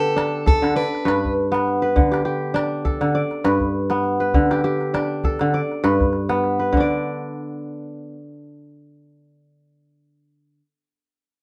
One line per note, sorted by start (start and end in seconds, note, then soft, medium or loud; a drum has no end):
0.00 0.61 D3 medium
0.00 1.01 B3 medium
0.00 1.28 G4 medium
0.00 0.46 A4 loud
0.00 0.67 B4 medium
0.16 1.84 D4 medium
0.16 calabash click medium
0.46 1.78 A4 medium
0.46 0.75 A4 medium
0.46 calabash thump medium
0.62 0.82 D3 medium
0.62 calabash click soft
0.76 1.32 B4 medium
0.76 1.86 D5 medium
0.95 calabash click soft
1.05 2.01 G2 medium
1.05 1.82 B4 medium
1.05 calabash click medium
1.25 calabash thump soft
1.52 3.38 B3 medium
1.52 calabash click soft
1.68 calabash click soft
1.82 3.05 B4 medium
1.96 3.00 D3 medium
1.96 calabash thump medium
2.12 2.25 G4 medium
2.12 calabash click soft
2.25 3.66 G4 medium
2.54 4.22 D4 medium
2.54 calabash click medium
2.85 4.17 A4 medium
2.85 calabash thump medium
3.01 3.20 D3 medium
3.01 calabash click soft
3.15 4.26 D5 medium
3.31 calabash click soft
3.44 4.39 G2 medium
3.44 4.20 B4 medium
3.44 calabash click medium
3.60 calabash thump soft
3.90 5.77 B3 medium
3.90 calabash click soft
4.04 calabash click soft
4.20 5.43 B4 medium
4.34 5.40 D3 medium
4.34 calabash thump medium
4.51 4.64 G4 medium
4.51 calabash click soft
4.64 6.05 G4 medium
4.81 calabash click soft
4.94 6.62 D4 medium
4.94 calabash click medium
5.24 6.56 A4 medium
5.24 calabash thump medium
5.39 5.59 D3 medium
5.39 calabash click soft
5.53 6.65 D5 medium
5.53 calabash click soft
5.71 calabash click soft
5.84 6.78 G2 medium
5.84 6.59 B4 medium
5.84 calabash click medium
6.00 calabash thump soft
6.00 calabash click soft
6.13 calabash click soft
6.29 8.16 B3 medium
6.29 calabash click soft
6.44 calabash click soft
6.59 7.82 B4 medium
6.73 10.59 D3 medium
6.73 calabash thump medium
6.77 10.64 D4 medium
6.77 10.66 D5 medium